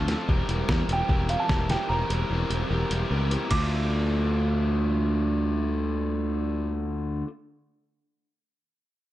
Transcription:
Already playing: fingered electric bass D2, overdriven electric guitar A4
0.08 overdriven electric guitar F3 A3 C4 F4 A4, snare, closed hi-hat
0.29 fingered electric bass E1, overdriven electric guitar E2 E3 G3 C4 G4 A#4, kick
0.48 fingered electric bass E1, overdriven electric guitar E2 E3 G3 C4 G4 A#4, closed hi-hat
0.69 overdriven electric guitar E2 E3 G3 C4 G4 A#4, fingered electric bass E2, kick, snare
0.88 fingered electric bass E1, overdriven electric guitar E2 E3 G3 C4 G4 A#4, closed hi-hat
0.92 upright piano G5
1.09 fingered electric bass E1, overdriven electric guitar E2 E3 G3 C4 G4 A#4, kick
1.29 overdriven electric guitar E2 E3 G3 C4 G4 A#4, upright piano F5, closed hi-hat
1.40 upright piano A5
1.49 fingered electric bass E1, overdriven electric guitar E2 E3 G3 C4 G4 A#4, kick, snare
1.70 overdriven electric guitar E2 E3 G3 C4 G4 A#4, upright piano G5, snare, closed hi-hat
1.89 fingered electric bass E1, overdriven electric guitar E2 E3 G3 C4 G4 A#4, upright piano A#5
2.10 fingered electric bass E1, overdriven electric guitar E2 E3 G3 C4 G4 A#4, closed hi-hat
2.30 fingered electric bass E1, overdriven electric guitar E2 E3 G3 C4 G4 A#4
2.50 fingered electric bass E1, overdriven electric guitar E2 E3 G3 C4 G4, closed hi-hat
2.54 overdriven electric guitar A#4
2.70 fingered electric bass E1, overdriven electric guitar E2 E3 G3 C4 G4 A#4
2.90 fingered electric bass E1, overdriven electric guitar E2 E3 G3 C4 G4 A#4, closed hi-hat
3.11 fingered electric bass C#2, overdriven electric guitar E2 E3 G3 C4 G4 A#4
3.30 overdriven electric guitar E2 E3 G3 C4 G4 A#4, closed hi-hat
3.49 fingered electric bass D2, overdriven electric guitar D3 A3 D4, upright piano D6, kick, ride
3.53 overdriven electric guitar F4

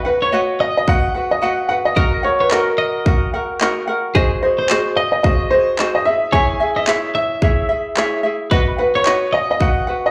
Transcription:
0.05 ukulele F#4 B4 F#5, upright piano B4
0.22 clean electric guitar C#5, upright piano C#5
0.32 ukulele F#4 B4 D#5 F#5
0.60 clean electric guitar D#5, upright piano D#5
0.77 upright piano D#5
0.88 ukulele F#4 B4 D#5 F#5, upright piano F#5, kick
1.14 ukulele F#4 B4 F#5
1.31 upright piano D#5
1.42 ukulele F#4 B4 D#5 F#5, upright piano F#5
1.69 ukulele F#4 B4 F#5, upright piano F#5
1.85 upright piano D#5
1.96 ukulele F#4 A#4 D#5 F#5, clean electric guitar A#4, kick
2.23 ukulele F#4 A#4 F#5, upright piano C#5
2.40 upright piano B4, clean electric guitar C#5
2.51 ukulele F#4 A#4 D#5 F#5, upright piano A#4, clap
2.78 clean electric guitar D#5
3.06 ukulele F#4 A#4 D#5 F#5, kick
3.34 ukulele F#4 A#4 F#5
3.61 ukulele F#4 A#4 D#5 F#5, clap
3.88 ukulele F#4 A#4 F#5
4.15 ukulele F#4 G#4 C5 D#5, clean electric guitar G#4, kick
4.43 ukulele F#4 G#4 D#5, upright piano C5
4.59 clean electric guitar C5, upright piano C5
4.69 ukulele F#4 G#4 C5 D#5, clap
4.96 upright piano D#5, clean electric guitar D#5
5.12 upright piano D#5
5.23 ukulele F#4 G#4 C5 D#5, upright piano D#5, kick
5.50 ukulele F#4 G#4 D#5, upright piano C5
5.79 ukulele F#4 G#4 C5 D#5, clap
5.95 upright piano D#5
6.05 ukulele E4 G#4 E5, upright piano E5
6.32 ukulele E4 G#4 C#5 E5, clean electric guitar C#5, upright piano G#5, kick
6.60 ukulele E4 G#4 E5
6.76 clean electric guitar D#5, upright piano E5
6.87 ukulele E4 G#4 C#5 E5, clap
7.15 clean electric guitar E5, upright piano E5
7.42 ukulele E4 G#4 C#5 E5, kick
7.69 ukulele E4 G#4 E5
7.97 ukulele E4 G#4 C#5 E5, clap
8.23 ukulele E4 G#4 E5
8.51 ukulele F#4 B4 D#5 F#5, clean electric guitar B4, kick
8.78 ukulele F#4 B4 F#5, upright piano B4
8.95 clean electric guitar C#5, upright piano C#5
9.06 ukulele F#4 B4 D#5 F#5, clap
9.33 clean electric guitar D#5, upright piano D#5
9.51 upright piano D#5
9.60 ukulele F#4 B4 D#5 F#5, upright piano F#5, kick
9.87 ukulele F#4 B4 F#5
10.06 upright piano D#5

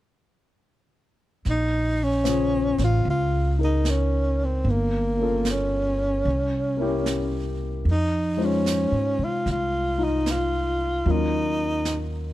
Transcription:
1.45 upright bass A#1, brush sweep, snare
1.50 tenor saxophone D#4
2.03 tenor saxophone C#4
2.24 grand piano C#3 F4 C5, snare, hi-hat pedal
2.29 grand piano G#4
2.78 upright bass A1, snare
2.84 tenor saxophone F4
3.05 upright bass C#2, brush sweep
3.10 tenor saxophone F4
3.59 grand piano D#4 G#4 A#4
3.64 tenor saxophone D#4
3.85 snare, hi-hat pedal
3.90 tenor saxophone C#4
4.44 tenor saxophone C4
4.64 upright bass G1, brush sweep
4.71 tenor saxophone A#3
5.17 grand piano A#3 C#4 F4
5.23 grand piano A4
5.45 snare, hi-hat pedal
5.51 tenor saxophone C#4
6.25 upright bass C2, brush sweep
6.77 grand piano A#3 C#4 E4
6.82 grand piano G4
7.06 snare, hi-hat pedal
7.85 upright bass F2, brush sweep
7.90 tenor saxophone D#4
8.37 grand piano G#3 D#4 C5
8.41 tenor saxophone C#4, grand piano F4
8.66 snare, hi-hat pedal
8.92 upright bass G#2
9.19 upright bass C3
9.24 tenor saxophone F4
9.46 upright bass C2, brush sweep, snare
9.51 tenor saxophone F4
9.98 grand piano D#4 F4
10.04 tenor saxophone D#4
10.26 snare, hi-hat pedal
10.31 tenor saxophone F4
11.06 upright bass D#2, grand piano F#3 A#3 C#4 F4, brush sweep
11.12 tenor saxophone D#4
11.85 snare, hi-hat pedal

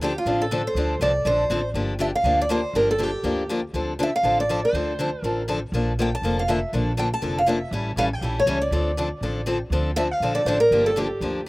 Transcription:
Already playing: upright bass D2
0.01 steel-string acoustic guitar D3 F3 C4 D4 G4 A4
0.18 steel-string acoustic guitar F4
0.25 upright bass A1, steel-string acoustic guitar D3 F3 C4 D4 A4
0.42 steel-string acoustic guitar A4
0.51 steel-string acoustic guitar D3 F3 C4 D4 A4
0.67 steel-string acoustic guitar C5
0.75 upright bass D2, steel-string acoustic guitar D3 F3 C4 D4 A4
1.00 upright bass C2, steel-string acoustic guitar D3 F3 C4 D4 A4 D5
1.25 upright bass A#1, steel-string acoustic guitar D3 F3 C4 D4 A4 C5
1.50 upright bass A1, steel-string acoustic guitar D3 F3 C4 D4 A4 C5
1.74 upright bass G1, steel-string acoustic guitar D3 F3 A#3 D4 G4
1.99 steel-string acoustic guitar D3 F3 A#3 D4 G4 E5
2.15 steel-string acoustic guitar F5
2.23 upright bass D2, steel-string acoustic guitar D3 F3 A#3 D4 G4
2.42 steel-string acoustic guitar D5
2.49 steel-string acoustic guitar D3 F3 A#3 D4 G4 C5
2.73 upright bass G1, steel-string acoustic guitar D3 F3 A#3 D4 G4 A#4
2.91 steel-string acoustic guitar A4
2.98 steel-string acoustic guitar D3 F3 A#3 D4 G4
3.03 steel-string acoustic guitar G4
3.23 upright bass D2, steel-string acoustic guitar D3 F3 A#3 D4 G4
3.49 steel-string acoustic guitar D3 F3 A#3 D4 G4
3.73 upright bass D2, steel-string acoustic guitar D3 F3 C4 D4 A4
3.99 steel-string acoustic guitar D3 F3 C4 D4 A4 E5
4.16 steel-string acoustic guitar F5
4.23 upright bass A1, steel-string acoustic guitar D3 F3 C4 D4 A4
4.40 steel-string acoustic guitar D5
4.49 steel-string acoustic guitar D3 F3 C4 D4 A4
4.65 steel-string acoustic guitar C5
4.73 upright bass D2, steel-string acoustic guitar D3 F3 C4 D4 A4
4.99 steel-string acoustic guitar D3 F3 C4 D4 A4
5.22 upright bass A1, steel-string acoustic guitar D3 F3 C4 D4 A4 A#4
5.48 steel-string acoustic guitar D3 F3 C4 D4 A4
5.72 upright bass A#1, steel-string acoustic guitar D3 F3 A#3 D4 A4
5.99 steel-string acoustic guitar D3 F3 A#3 D4 A4 G5
6.15 steel-string acoustic guitar A5
6.22 upright bass F1, steel-string acoustic guitar D3 F3 A#3 D4 A4
6.39 steel-string acoustic guitar F5
6.48 steel-string acoustic guitar D3 F3 A#3 D4 A4 E5
6.73 upright bass A#1, steel-string acoustic guitar D3 F3 A#3 D4 A4
6.97 steel-string acoustic guitar D3 F3 A#3 D4 A4 G5
7.14 steel-string acoustic guitar A5
7.22 upright bass F1, steel-string acoustic guitar D3 F3 A#3 D4 A4
7.38 steel-string acoustic guitar F5
7.46 steel-string acoustic guitar D3 F3 A#3 D4 A4 E5
7.71 upright bass A1, steel-string acoustic guitar E3 G3 C#4 E4 A4
7.96 upright bass A1, steel-string acoustic guitar E3 G3 C#4 E4 A4 F5
8.13 steel-string acoustic guitar G5
8.21 upright bass A#1, steel-string acoustic guitar E3 G3 C#4 E4 A4
8.40 steel-string acoustic guitar C#5
8.46 upright bass C#2, steel-string acoustic guitar E3 G3 C#4 E4 A4
8.62 steel-string acoustic guitar D5
8.71 upright bass D2, steel-string acoustic guitar D3 F3 C4 D4 A4
8.97 steel-string acoustic guitar D3 F3 C4 D4 A4
9.21 upright bass A1, steel-string acoustic guitar D3 F3 C4 D4 A4
9.46 steel-string acoustic guitar D3 F3 C4 D4 A4
9.70 upright bass D2, steel-string acoustic guitar D3 F3 C4 D4 A4
9.96 steel-string acoustic guitar D3 F3 C4 D4 A4 E5
10.11 steel-string acoustic guitar F5
10.20 upright bass A#1, steel-string acoustic guitar D3 F3 C4 D4 A4
10.35 steel-string acoustic guitar D5
10.45 upright bass A1, steel-string acoustic guitar D3 F3 C4 D4 A4 C5
10.60 steel-string acoustic guitar A#4
10.71 upright bass G1, steel-string acoustic guitar D3 F3 A#3 D4 G4
10.86 steel-string acoustic guitar A4
10.96 steel-string acoustic guitar D3 F3 A#3 D4 G4
11.21 upright bass D2, steel-string acoustic guitar D3 F3 A#3 D4 G4

